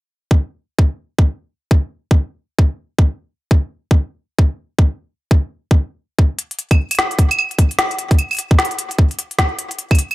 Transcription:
0.31 kick
0.79 kick
1.19 kick
1.71 kick
2.11 kick
2.59 kick
2.99 kick
3.51 kick
3.91 kick
4.39 kick
4.79 kick
5.31 kick
5.71 kick
6.19 kick
6.39 closed hi-hat
6.51 closed hi-hat
6.59 closed hi-hat
6.71 kick, closed hi-hat, claves
6.91 closed hi-hat, claves
6.95 snare, closed hi-hat
6.99 closed hi-hat
7.11 closed hi-hat
7.19 kick, closed hi-hat
7.31 closed hi-hat, claves
7.39 claves
7.51 closed hi-hat
7.59 kick, closed hi-hat
7.71 closed hi-hat
7.79 snare, closed hi-hat
7.91 closed hi-hat
7.99 closed hi-hat
8.11 kick, closed hi-hat
8.19 closed hi-hat, claves
8.31 closed hi-hat, claves
8.33 closed hi-hat
8.35 closed hi-hat
8.37 closed hi-hat
8.39 closed hi-hat
8.51 kick
8.59 snare, closed hi-hat
8.65 closed hi-hat
8.71 closed hi-hat
8.79 closed hi-hat
8.91 closed hi-hat
8.99 kick
9.11 closed hi-hat
9.19 closed hi-hat
9.31 closed hi-hat
9.39 kick, snare, closed hi-hat
9.59 closed hi-hat
9.71 closed hi-hat
9.79 closed hi-hat
9.91 kick, closed hi-hat, claves
9.99 closed hi-hat
10.11 closed hi-hat, claves

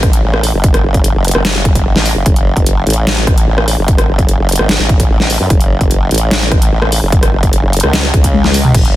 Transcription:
Already playing: A1
0.03 kick, cross-stick, closed hi-hat
0.13 closed hi-hat
0.23 A1
0.34 cross-stick
0.43 open hi-hat
0.54 F#1
0.64 kick, closed hi-hat
0.74 cross-stick, closed hi-hat
0.84 F#1
0.94 kick, closed hi-hat
1.04 closed hi-hat
1.15 F#1
1.25 closed hi-hat
1.28 closed hi-hat
1.31 F#1, cross-stick, closed hi-hat
1.45 snare, closed hi-hat
1.65 kick, closed hi-hat
1.75 kick, closed hi-hat
1.96 A1, snare
2.06 open hi-hat
2.16 F#1
2.26 F#1, kick, closed hi-hat
2.36 closed hi-hat
2.57 kick, closed hi-hat
2.66 closed hi-hat
2.87 A1, closed hi-hat
2.90 closed hi-hat
2.93 closed hi-hat
3.07 snare, closed hi-hat
3.27 kick, cross-stick, closed hi-hat
3.38 closed hi-hat
3.47 A1
3.58 cross-stick
3.68 open hi-hat
3.78 F#1
3.88 kick, closed hi-hat
3.98 cross-stick, closed hi-hat
4.08 F#1
4.19 kick, closed hi-hat
4.29 closed hi-hat
4.39 F#1
4.49 closed hi-hat
4.52 closed hi-hat
4.56 G#1, cross-stick, closed hi-hat
4.69 snare, closed hi-hat
4.79 A1
4.89 kick, closed hi-hat
5.00 kick, closed hi-hat
5.10 A1
5.20 snare
5.30 open hi-hat
5.40 F#2
5.50 F#1, kick, closed hi-hat
5.61 closed hi-hat
5.81 kick, closed hi-hat
5.91 closed hi-hat
6.11 A1, closed hi-hat
6.14 closed hi-hat
6.18 closed hi-hat
6.31 snare, closed hi-hat
6.52 kick, cross-stick, closed hi-hat
6.62 closed hi-hat
6.72 A1
6.82 cross-stick
6.92 open hi-hat
7.02 F#1
7.12 kick, closed hi-hat
7.23 cross-stick, closed hi-hat
7.33 F#1
7.43 kick, closed hi-hat
7.53 closed hi-hat
7.63 F#1
7.73 closed hi-hat
7.77 closed hi-hat
7.80 C#2, cross-stick, closed hi-hat
7.93 snare, closed hi-hat
8.14 C#2, kick, closed hi-hat
8.24 kick, closed hi-hat
8.34 high tom
8.44 snare, high tom
8.54 open hi-hat
8.65 mid tom
8.74 F#1, kick, closed hi-hat, crash
8.85 closed hi-hat

